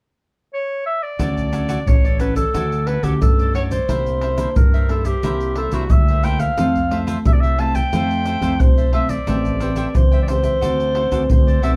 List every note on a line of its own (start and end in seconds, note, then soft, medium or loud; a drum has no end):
0.54 0.84 C#5 medium
0.86 1.04 E5 medium
1.03 1.89 D5 medium
1.19 1.77 D2 medium
1.19 1.84 D3 medium
1.19 1.48 F#3 medium
1.19 1.48 C#4 medium
1.19 1.48 E4 medium
1.19 1.51 F#4 medium
1.19 1.52 A4 medium
1.19 1.52 C#5 medium
1.19 1.53 D5 medium
1.19 pandeiro medium
1.19 shaker medium
1.19 surdo medium
1.37 pandeiro soft
1.37 shaker soft
1.37 surdo soft
1.52 1.81 F#3 soft
1.52 1.81 C#4 soft
1.52 1.81 E4 medium
1.52 1.68 F#4 medium
1.52 1.68 A4 medium
1.52 1.68 C#5 medium
1.52 1.69 D5 medium
1.52 pandeiro medium
1.52 shaker medium
1.69 1.78 F#4 medium
1.69 1.79 A4 medium
1.69 1.79 C#5 medium
1.69 1.79 D5 medium
1.69 pandeiro medium
1.69 shaker medium
1.86 2.44 A1 medium
1.86 2.51 A2 soft
1.86 2.07 F#3 medium
1.86 2.07 C#4 medium
1.86 2.07 E4 medium
1.86 2.20 C#5 medium
1.86 pandeiro medium
1.86 shaker medium
1.86 surdo medium
2.04 2.19 A4 medium
2.04 2.19 C#5 medium
2.04 2.19 D5 medium
2.04 pandeiro soft
2.04 shaker soft
2.19 2.40 F#3 medium
2.19 2.40 C#4 medium
2.19 2.40 E4 medium
2.19 2.35 F#4 soft
2.19 2.36 A4 soft
2.19 2.36 B4 medium
2.19 2.36 C#5 soft
2.19 2.35 D5 soft
2.19 pandeiro medium
2.19 shaker medium
2.36 2.89 A4 medium
2.36 2.53 A4 soft
2.36 2.53 C#5 soft
2.36 2.52 D5 soft
2.36 pandeiro medium
2.36 shaker medium
2.36 surdo soft
2.54 2.97 D2 medium
2.54 3.18 D3 soft
2.54 2.85 F#3 medium
2.54 2.86 E4 medium
2.54 2.85 F#4 medium
2.54 2.86 A4 medium
2.54 2.87 C#5 medium
2.54 2.87 D5 medium
2.54 pandeiro medium
2.54 shaker medium
2.54 surdo medium
2.72 pandeiro soft
2.72 shaker soft
2.86 3.01 F#4 soft
2.86 3.02 A4 soft
2.86 3.05 B4 medium
2.86 3.02 C#5 soft
2.86 3.03 D5 soft
2.86 pandeiro medium
3.03 3.18 D2 medium
3.03 3.49 F#3 medium
3.03 3.49 C#4 medium
3.03 3.49 E4 medium
3.03 3.13 F#4 medium
3.03 3.21 G4 medium
3.03 3.13 A4 medium
3.03 3.13 C#5 medium
3.03 3.13 D5 medium
3.03 pandeiro medium
3.03 shaker medium
3.03 surdo soft
3.21 3.79 G2 medium
3.21 3.85 A2 soft
3.21 3.53 A4 medium
3.21 pandeiro medium
3.21 shaker medium
3.21 surdo medium
3.39 3.54 A4 soft
3.39 3.55 C#5 soft
3.39 3.54 D5 soft
3.39 pandeiro soft
3.39 shaker soft
3.53 3.76 F#3 medium
3.53 3.76 C#4 medium
3.53 3.76 E4 medium
3.53 3.70 F#4 medium
3.53 3.71 A4 medium
3.53 3.63 C#5 medium
3.53 3.70 C#5 medium
3.53 3.69 D5 medium
3.53 pandeiro medium
3.71 3.88 A4 soft
3.71 4.58 C5 medium
3.71 3.87 C#5 soft
3.71 3.87 D5 soft
3.71 pandeiro medium
3.71 shaker medium
3.71 surdo soft
3.88 4.46 C2 medium
3.88 4.53 C3 medium
3.88 4.20 A#3 medium
3.88 4.20 D4 medium
3.88 4.20 E4 medium
3.88 4.21 E4 medium
3.88 4.21 A#4 medium
3.88 4.21 C5 medium
3.88 4.22 E5 medium
3.88 pandeiro medium
3.88 shaker medium
3.88 surdo medium
4.06 pandeiro soft
4.06 shaker soft
4.06 surdo soft
4.21 4.36 E4 soft
4.21 4.37 A#4 medium
4.21 4.37 C5 medium
4.21 4.38 E5 soft
4.21 pandeiro medium
4.38 4.84 A#3 medium
4.38 4.84 D4 medium
4.38 4.48 E4 medium
4.38 4.84 E4 medium
4.38 4.48 A#4 medium
4.38 4.48 C5 medium
4.38 4.48 E5 medium
4.38 pandeiro medium
4.38 shaker medium
4.56 5.14 G2 medium
4.56 5.20 G3 medium
4.56 4.91 A#4 medium
4.56 pandeiro medium
4.56 shaker medium
4.56 surdo loud
4.74 4.89 A#4 medium
4.74 4.89 C5 medium
4.74 4.89 E5 medium
4.74 pandeiro soft
4.74 shaker soft
4.89 5.10 A#3 medium
4.89 5.10 D4 medium
4.89 5.05 E4 soft
4.89 5.10 E4 medium
4.89 5.07 A4 medium
4.89 5.05 A#4 soft
4.89 5.05 C5 soft
4.89 5.04 E5 medium
4.89 pandeiro medium
5.05 5.57 G4 medium
5.05 5.23 A#4 soft
5.05 5.22 C5 soft
5.05 5.22 E5 soft
5.05 pandeiro medium
5.05 shaker medium
5.05 surdo soft
5.23 5.67 C2 medium
5.23 5.88 C3 soft
5.23 5.69 A#3 medium
5.23 5.69 D4 medium
5.23 5.56 E4 medium
5.23 5.69 E4 medium
5.23 5.56 A#4 medium
5.23 5.57 C5 medium
5.23 5.57 E5 medium
5.23 pandeiro medium
5.23 shaker medium
5.23 surdo medium
5.41 pandeiro soft
5.41 shaker soft
5.56 5.72 E4 soft
5.56 5.75 A4 medium
5.56 5.72 A#4 soft
5.56 5.72 C5 medium
5.56 5.72 E5 medium
5.56 pandeiro medium
5.72 5.88 C2 medium
5.72 6.18 A#3 medium
5.72 6.19 D4 medium
5.72 5.83 E4 medium
5.72 6.19 E4 medium
5.72 5.93 F#4 medium
5.72 5.83 A#4 medium
5.72 5.83 C5 medium
5.72 5.83 E5 medium
5.72 pandeiro medium
5.72 shaker medium
5.72 surdo soft
5.90 6.49 D2 medium
5.90 6.55 G3 medium
5.90 6.25 E5 loud
5.90 pandeiro medium
5.90 shaker medium
5.90 surdo loud
6.08 6.22 A#4 soft
6.08 6.23 C5 soft
6.08 6.24 E5 medium
6.08 pandeiro soft
6.08 shaker soft
6.23 6.53 A#3 medium
6.23 6.53 D4 medium
6.23 6.39 E4 medium
6.23 6.53 E4 medium
6.23 6.40 A#4 medium
6.23 6.40 C5 medium
6.23 6.38 E5 medium
6.23 6.41 G5 medium
6.23 pandeiro medium
6.23 shaker medium
6.23 surdo soft
6.39 6.57 A#4 soft
6.39 6.57 C5 soft
6.39 6.56 E5 medium
6.39 6.98 F5 loud
6.39 pandeiro medium
6.39 shaker medium
6.39 surdo soft
6.58 7.16 F2 medium
6.58 7.23 F3 medium
6.58 6.78 A3 medium
6.58 6.78 C4 medium
6.58 6.79 E4 medium
6.58 6.89 F4 medium
6.58 6.90 A4 medium
6.58 6.91 C5 medium
6.58 pandeiro medium
6.58 shaker medium
6.58 surdo medium
6.75 pandeiro soft
6.75 shaker soft
6.75 surdo soft
6.91 7.54 A3 medium
6.91 7.54 C4 medium
6.91 7.54 E4 medium
6.91 7.06 F4 soft
6.91 7.07 A4 soft
6.91 7.07 C5 medium
6.91 7.07 E5 medium
6.91 pandeiro medium
7.07 7.17 F4 medium
7.07 7.17 A4 medium
7.07 7.17 C5 medium
7.07 7.18 E5 medium
7.07 pandeiro medium
7.07 shaker medium
7.25 7.83 C2 medium
7.25 7.90 C3 medium
7.25 7.34 E5 medium
7.25 pandeiro medium
7.25 shaker medium
7.25 surdo loud
7.33 7.42 D5 medium
7.41 7.59 C5 medium
7.41 7.62 E5 medium
7.41 7.58 E5 medium
7.41 pandeiro soft
7.41 shaker soft
7.45 7.59 A4 medium
7.58 7.79 A3 medium
7.58 7.79 C4 medium
7.58 7.79 E4 medium
7.58 7.75 F4 soft
7.58 7.75 A4 soft
7.58 7.74 C5 soft
7.58 7.73 E5 medium
7.58 7.77 A5 loud
7.58 pandeiro medium
7.74 7.92 A4 soft
7.74 7.91 C5 soft
7.74 7.91 E5 soft
7.74 8.62 G5 loud
7.74 pandeiro medium
7.74 shaker medium
7.74 surdo soft
7.93 8.36 F2 medium
7.93 8.57 F3 medium
7.93 8.38 A3 medium
7.93 8.38 C4 medium
7.93 8.39 E4 medium
7.93 8.25 F4 medium
7.93 8.26 A4 medium
7.93 8.27 C5 medium
7.93 8.27 E5 medium
7.93 pandeiro medium
7.93 shaker medium
7.93 surdo medium
8.11 pandeiro soft
8.11 shaker soft
8.25 8.41 F4 soft
8.25 8.41 A4 soft
8.25 8.42 C5 medium
8.25 8.42 E5 soft
8.25 pandeiro medium
8.25 shaker medium
8.41 8.57 F2 medium
8.41 8.88 A3 medium
8.41 8.88 C4 medium
8.41 8.89 E4 medium
8.41 8.52 F4 medium
8.41 8.52 A4 medium
8.41 8.53 C5 medium
8.41 8.53 E5 medium
8.41 pandeiro medium
8.41 shaker medium
8.41 surdo soft
8.60 9.18 B1 medium
8.60 8.93 C5 medium
8.60 pandeiro medium
8.60 shaker medium
8.60 surdo loud
8.77 8.92 A4 soft
8.77 8.93 C5 soft
8.77 8.93 E5 soft
8.77 pandeiro soft
8.77 shaker soft
8.93 9.16 A3 medium
8.93 9.16 C4 medium
8.93 9.16 E4 medium
8.93 9.09 F4 medium
8.93 9.09 A4 medium
8.93 9.10 C5 medium
8.93 9.12 E5 medium
8.93 9.08 E5 medium
8.93 pandeiro medium
9.09 9.26 A4 soft
9.09 9.27 C5 soft
9.09 9.95 D5 medium
9.09 9.26 E5 soft
9.09 pandeiro medium
9.09 shaker medium
9.09 surdo soft
9.27 9.85 A1 medium
9.27 9.92 A3 medium
9.27 9.57 C4 medium
9.27 9.57 G4 medium
9.27 9.59 A4 medium
9.27 9.57 B4 medium
9.27 9.60 C5 medium
9.27 9.60 E5 medium
9.27 9.61 G5 medium
9.27 pandeiro medium
9.27 shaker medium
9.27 surdo medium
9.45 pandeiro soft
9.45 shaker soft
9.45 surdo soft
9.60 10.24 C4 medium
9.60 10.24 G4 medium
9.60 9.75 A4 soft
9.60 10.24 B4 medium
9.60 9.76 C5 medium
9.60 9.76 E5 medium
9.60 9.76 G5 medium
9.60 pandeiro medium
9.60 shaker medium
9.76 9.86 A4 medium
9.76 9.87 C5 medium
9.76 9.87 E5 medium
9.76 9.87 G5 medium
9.76 pandeiro medium
9.76 shaker medium
9.95 10.53 C#2 medium
9.95 10.60 E3 medium
9.95 10.21 C5 medium
9.95 pandeiro medium
9.95 shaker medium
9.95 surdo medium
10.11 10.27 C5 medium
10.11 10.28 E5 medium
10.11 10.27 G5 medium
10.11 pandeiro soft
10.11 shaker soft
10.23 10.30 D5 medium
10.28 10.57 C4 medium
10.28 10.58 G4 medium
10.28 10.44 A4 soft
10.28 10.58 B4 medium
10.28 10.44 C5 soft
10.28 11.30 C5 loud
10.28 10.43 E5 soft
10.28 10.42 G5 soft
10.28 pandeiro medium
10.28 shaker medium
10.43 10.61 C5 soft
10.43 10.61 E5 soft
10.43 10.60 G5 soft
10.43 pandeiro medium
10.43 shaker medium
10.43 surdo soft
10.61 11.06 D2 medium
10.61 11.27 D3 medium
10.61 11.08 C4 soft
10.61 10.94 F#4 medium
10.61 11.09 F#4 medium
10.61 10.94 A4 medium
10.61 10.95 C5 medium
10.61 10.96 D5 medium
10.61 pandeiro medium
10.61 shaker medium
10.61 surdo medium
10.80 pandeiro soft
10.80 shaker soft
10.95 11.10 F#4 soft
10.95 11.11 A4 soft
10.95 11.11 C5 soft
10.95 11.12 D5 medium
10.95 pandeiro medium
11.12 11.27 D2 medium
11.12 11.58 C4 medium
11.12 11.22 F#4 medium
11.12 11.58 F#4 medium
11.12 11.22 A4 medium
11.12 11.58 B4 medium
11.12 11.22 C5 medium
11.12 11.22 D5 medium
11.12 pandeiro medium
11.12 shaker medium
11.12 surdo soft
11.30 11.59 D2 medium
11.30 11.76 A2 medium
11.30 11.62 C5 medium
11.30 pandeiro medium
11.30 shaker medium
11.30 surdo loud
11.47 11.62 A4 soft
11.47 11.63 C5 soft
11.47 11.63 D5 soft
11.47 pandeiro soft
11.47 shaker soft
11.62 11.76 B1 medium
11.62 11.74 C4 medium
11.62 11.76 F#4 medium
11.62 11.74 F#4 medium
11.62 11.76 A4 medium
11.62 11.74 B4 medium
11.62 11.76 C5 medium
11.62 11.76 D5 medium
11.62 11.71 E5 medium
11.62 pandeiro medium
11.62 shaker medium
11.62 surdo soft